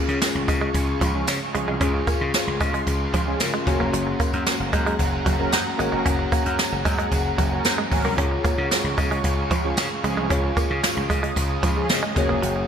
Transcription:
Already playing: G#3 C#4 F4 G#4 F5 C#6
0.08 C#3, closed hi-hat
0.21 muted clean electric guitar stroke, snare, closed hi-hat, tambourine
0.35 C#2
0.48 C#3 G#3, kick, closed hi-hat, tambourine
0.61 G#3
0.73 C#2 C#3 G#3, kick, closed hi-hat, tambourine
0.78 C#4
1.01 C#2 F3, kick, closed hi-hat, tambourine
1.14 F3 C#4 G#4
1.27 C#3, muted clean electric guitar stroke, snare, closed hi-hat, tambourine
1.54 C#2 F3 G#3 C#4 G#4, closed hi-hat
1.68 C2 G#3
1.80 C#2 C#3 G#3 C#4 F4 G#4 C6, kick, closed hi-hat, tambourine
1.94 muted clean electric guitar stroke
2.07 G#3 A#3 C#4, kick, closed hi-hat, tambourine
2.21 C#3
2.34 muted clean electric guitar stroke, snare, closed hi-hat, tambourine
2.47 C#2
2.60 C#3 G#3, kick, closed hi-hat, tambourine
2.74 G#3, closed hi-hat
2.86 C#2 C#3 G#3 C#4, kick, closed hi-hat, tambourine
3.14 C#2 F3, kick, closed hi-hat, tambourine
3.27 F3 C#4 G#4
3.40 C#3 C#4 F4 A#4, snare, closed hi-hat, tambourine
3.54 G#3
3.65 F#1 F#3 A#3 C#4 F#4 G#4 A#4 C#5 F#5 A#5, muted clean electric guitar stroke, kick, closed hi-hat, tambourine
3.71 F#3
3.80 F1 A#3
3.93 F#1 F#3, closed hi-hat, tambourine
4.07 muted clean electric guitar stroke
4.20 A#3, kick, closed hi-hat, tambourine
4.33 F#2, closed hi-hat
4.46 muted clean electric guitar stroke, snare, closed hi-hat, tambourine
4.60 F#1
4.73 F#2 G#3, kick, closed hi-hat, tambourine
4.86 G#3, closed hi-hat
4.99 F#1 F#3 C#4 F#4, kick, closed hi-hat, tambourine
5.26 F#1 F#3, kick, closed hi-hat, tambourine
5.39 F#3 C#4 A#4
5.52 F#2, muted clean electric guitar stroke, snare, closed hi-hat, tambourine
5.78 G#1 F#3 G#3 A#3 C#4 F#4 G#4 A#4 C#5, closed hi-hat, tambourine
5.82 C#4
5.92 F1 G#3
6.04 F#1 F#3 C#4, kick, closed hi-hat, tambourine
6.10 F#4
6.19 muted clean electric guitar stroke
6.32 A#3, kick, closed hi-hat, tambourine
6.46 F#2, closed hi-hat
6.59 muted clean electric guitar stroke, snare, closed hi-hat, tambourine
6.72 F#1
6.85 F#2 G#3, kick, closed hi-hat, tambourine
6.99 G#3, closed hi-hat
7.11 F#1 F#3 C#4 F#4, kick, closed hi-hat, tambourine
7.38 F#1 F#3, kick, closed hi-hat, tambourine
7.52 F#3 C#4 A#4
7.65 F#2, snare, closed hi-hat, tambourine
7.78 G#3
7.91 G#1 F#3 C#4 F#4 A#4, muted clean electric guitar stroke, kick, open hi-hat, tambourine
8.05 C2 A#3
8.17 C#2 C#3 G#3 C#4 F4 G#4 C#5 F5 C#6, kick, closed hi-hat
8.22 C#4
8.31 muted clean electric guitar stroke
8.45 A#3, kick, closed hi-hat, tambourine
8.58 C#3
8.71 muted clean electric guitar stroke, snare, closed hi-hat, tambourine
8.84 C#2
8.98 C#3 G#3, kick, closed hi-hat, tambourine
9.11 G#3, closed hi-hat
9.24 C#2 C#3 G#3 C#4, kick, closed hi-hat, tambourine
9.51 C#2 F3, kick, closed hi-hat, tambourine
9.64 F3 C#4 G#4
9.77 C#3, muted clean electric guitar stroke, snare, closed hi-hat, tambourine
10.03 C#2 F3 G#3 C#4 G#4, closed hi-hat, tambourine
10.17 C2 G#3
10.29 C#2 C#3 G#3 C#4 F4 G#4 C#5 D#6, kick, closed hi-hat, tambourine
10.44 muted clean electric guitar stroke
10.56 G#3 A#3 C#4, kick, closed hi-hat, tambourine
10.70 C#3
10.83 muted clean electric guitar stroke, snare, closed hi-hat, tambourine
10.97 C#2
11.10 C#3 G#3, kick, closed hi-hat, tambourine
11.23 G#3, closed hi-hat
11.36 C#2 C#3 G#3 C#4, kick, closed hi-hat, tambourine
11.63 C#2 F3, kick, closed hi-hat, tambourine
11.76 F3 C#4 G#4
11.89 C#3 F4 G#4 D#5, snare, closed hi-hat, tambourine
12.03 G#3
12.15 F#1 C#3 F#3 A#3 C#4 F#4 G#4 C#5 F#5 A#5, muted clean electric guitar stroke, kick, closed hi-hat, tambourine
12.29 F1 A#3
12.42 F#1 F#3, closed hi-hat, tambourine
12.56 muted clean electric guitar stroke

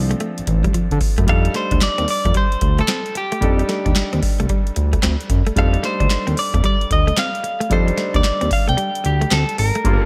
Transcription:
Already playing: C2 F3 C4 D4 A4
0.11 A3, closed hi-hat
0.20 A3, closed hi-hat
0.38 A1, closed hi-hat
0.47 A1, muted clean electric guitar stroke, kick, closed hi-hat
0.64 G3, kick, closed hi-hat
0.74 F3, kick, closed hi-hat
0.91 D3, kick, closed hi-hat
1.01 muted clean electric guitar stroke, kick, open hi-hat
1.18 F#2 A3, kick, closed hi-hat
1.27 F2 G3 D4 D#4 A4 F5, kick, closed hi-hat
1.45 muted clean electric guitar stroke, closed hi-hat
1.54 A3 C5, snare, closed hi-hat
1.71 D2 D4, kick, closed hi-hat
1.81 D5, snare, clap, closed hi-hat
1.98 D#2 C4, closed hi-hat
2.08 D5, muted clean electric guitar stroke, open hi-hat
2.25 F2 A3, kick, closed hi-hat
2.34 G3 C5, kick, closed hi-hat
2.52 closed hi-hat
2.61 D2, muted clean electric guitar stroke, kick, closed hi-hat
2.78 A3 A4, closed hi-hat
2.88 C4, snare, clap, closed hi-hat
3.06 closed hi-hat
3.15 G4, muted clean electric guitar stroke, closed hi-hat
3.32 A3, closed hi-hat
3.41 F2 G3 D4 D#4 A4, kick, closed hi-hat
3.59 muted clean electric guitar stroke, closed hi-hat
3.69 A3, snare, closed hi-hat
3.86 D#2 D4, kick, closed hi-hat
3.95 snare, clap, closed hi-hat
4.13 D#2 C4, closed hi-hat
4.23 muted clean electric guitar stroke, kick, open hi-hat
4.40 C2 A3, closed hi-hat
4.49 G3, kick, closed hi-hat
4.67 closed hi-hat
4.76 D2, muted clean electric guitar stroke, closed hi-hat
4.93 A3, kick, closed hi-hat
5.03 D2 C4, snare, clap, closed hi-hat
5.21 closed hi-hat
5.30 F#2, muted clean electric guitar stroke, kick, closed hi-hat
5.47 A3, closed hi-hat
5.56 F2 G3 D4 D#4 A4 F5, kick, closed hi-hat
5.73 muted clean electric guitar stroke, closed hi-hat
5.83 A3 C5, snare, closed hi-hat
6.00 D2 D4, kick, closed hi-hat
6.10 snare, clap, closed hi-hat
6.27 D#2 C4, closed hi-hat
6.37 D5, muted clean electric guitar stroke, open hi-hat
6.54 F2 A3, kick, closed hi-hat
6.64 G3 D5, kick, closed hi-hat
6.81 closed hi-hat
6.91 D2 D#5, muted clean electric guitar stroke, kick, closed hi-hat
7.07 A3, closed hi-hat
7.17 C4 F5, snare, clap, closed hi-hat
7.35 closed hi-hat
7.44 muted clean electric guitar stroke, closed hi-hat
7.60 A3, closed hi-hat
7.70 F2 G3 D4 D#4 A4 C5, kick, closed hi-hat
7.88 muted clean electric guitar stroke, closed hi-hat
7.97 A3, snare, closed hi-hat
8.14 D#2 D4 D5, kick, closed hi-hat
8.24 snare, clap, closed hi-hat
8.41 D#2 C4, closed hi-hat
8.51 F5, muted clean electric guitar stroke, kick, open hi-hat
8.68 C2 A3 G5, closed hi-hat
8.77 G3, closed hi-hat
8.95 closed hi-hat
9.04 D2 G4, muted clean electric guitar stroke, closed hi-hat
9.21 A3, closed hi-hat
9.31 D2 C4 A4, snare, clap, closed hi-hat
9.49 closed hi-hat
9.58 G#1 A#4, muted clean electric guitar stroke, open hi-hat
9.75 A3, closed hi-hat
9.84 G1 G3 A#3 D4 F4 A4, kick, closed hi-hat
9.93 A#4
9.99 A4, muted clean electric guitar stroke

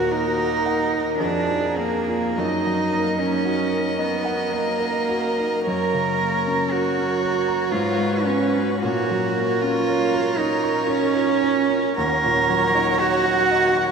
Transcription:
Already playing: D#2 A#2 A#3 F#4 A#4
0.11 A#3 D#4
0.38 A#4
0.66 F#5
0.93 A#4
1.19 F2 D4 G#4
1.48 F3
1.78 A#3
2.09 F4
2.38 F#2 D#4 A#4 D#5
2.66 F#3
2.93 A#3
3.19 C#4 D#4
3.45 F#4
3.71 A#4
3.98 B3 D#5
4.25 F#5
4.52 A#3 D#5
4.79 A#4
5.09 F#4
5.39 D#4
5.66 F#2 A#4 C#5
5.94 C#3
6.21 A#3
6.47 C#4
6.71 F#4 A#4
6.98 C#4
7.23 C#5
7.48 A#5
7.71 G#2 F4 B4
7.98 G#3
8.25 B3 C#4
8.55 C#4
8.82 A#2 F#4 A#4 C#5
9.11 F#3
9.36 A#3
9.62 C#4 F4
9.88 C#5
10.14 A#4
10.38 D#4 C#5
10.63 C#6
10.87 C#4 C#5
11.13 A#4
11.41 C#5
11.70 C#4
11.97 D#2 A#4 C#5 F#5
12.24 A#2
12.49 F#3
12.75 D#4
13.00 F#4 C#5
13.25 F#4
13.51 D#5
13.76 C#6

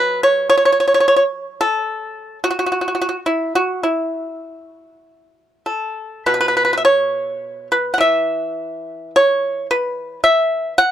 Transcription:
Already playing: B2 F#3 B4
0.23 C#5
0.50 C#5
0.57 C#5
0.65 C#5
0.72 C#5
0.80 C#5
0.88 C#5
0.94 C#5
1.00 C#5
1.08 C#5
1.16 C#5
1.61 A4
2.44 F#4
2.51 F#4
2.59 F#4
2.66 F#4
2.72 F#4
2.81 F#4
2.88 F#4
2.95 F#4
3.01 F#4
3.09 F#4
3.26 E4
3.55 F#4
3.83 E4
5.66 A4
6.26 B2 B4
6.34 B4
6.41 B4
6.48 B4
6.57 B4
6.65 B4
6.73 B4
6.77 E5
6.85 C#5
7.72 B4
7.94 F#5
7.98 E3 E5
9.16 C#5
9.71 B4
10.24 E5
10.78 F#5

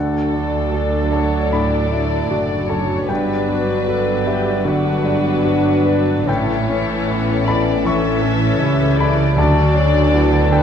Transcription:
Already playing: D2 F#3 A3 D4 F#4 A4 D5 F#5
0.33 D4
0.72 F#4 A4 D5
1.12 A4 C#5 F#5 A5
1.53 A2 D4 D5 B5
1.93 D4 E4
2.30 F#1 F#2 D4 F#4
2.69 C#4 A4 C#5 A5
3.09 G1 G2 F#3 B3 D4 G4 B4 D5 G5
3.48 D4 F#4
3.87 B3 F#4 A4
4.26 G4 B4 E5
4.65 D3 F#3 A3 D4 F#4 B4 D5 F#5
5.04 G3 D4
5.44 D4 F#4 F#5
5.86 B4 D5
6.27 A1 A2 E3 C#4 E4 A4 C#5 E5 G5
6.68 C#4
7.07 B3 E4
7.47 A4 D5 B5
7.85 E3 A3 C#4 A4 C#5 E5 C#6
8.23 C#4
8.60 C#2 C#3 E4 G4
8.98 A4 D5 B5
9.36 D2 D3 F#3 D4 F#4 A4 D5 A5
9.74 C#4 D4
10.13 B3 E4 F#4
10.51 D4 A4 B4 G5

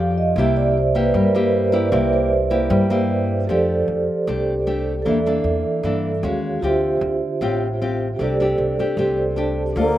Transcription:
Already playing: F2 F3 F4 G4 D5
0.00 F5
0.18 D#5
0.36 C2 C3 A#3 E4 G4 E5
0.57 D5
0.78 C5
0.95 A#3 E4 G4 B4
1.14 G2 G3 A#4
1.34 A#3 E4 G4 B4
1.56 C5
1.72 A#3 E4 G4 D5
1.92 C2 C3 A#3 E4 G4 E5
2.13 C5
2.50 A#3 E4 G4
2.70 G2 G3
2.90 A#3 E4 G4
3.45 F2 G4 A4
3.49 F3 A3 D4 G4 C5 D5
3.88 F2
4.27 C2 C3 A3 D4 G4
4.67 A3 D4 G4
5.02 E2 E3 A#3 D4 A4
5.06 D5 E5
5.26 A#3 D4 A4
5.44 E2
5.83 G2 E3 A#3 D4 A4
6.22 D#2 G#3 C#4 F#4 G#4 C#5 F5
6.60 D2 D3 C4 F4 G4 C5
6.64 G4 E5
7.01 D2
7.41 A1 A2 C4 F4 G4
7.82 C4 F4 G4
8.16 C2 A3 G4 A4
8.20 C3 D4 G4 C5 D5
8.40 A3 D4 G4
8.58 C2
8.79 A3 D4 G4
8.97 C2 C3 A3 D4 G4
9.15 G4 A4 C5 D5
9.36 A3 D4 G4 A5
9.73 D2 D3 A#3 D4 F4 A4
9.77 A#3 C5 D5

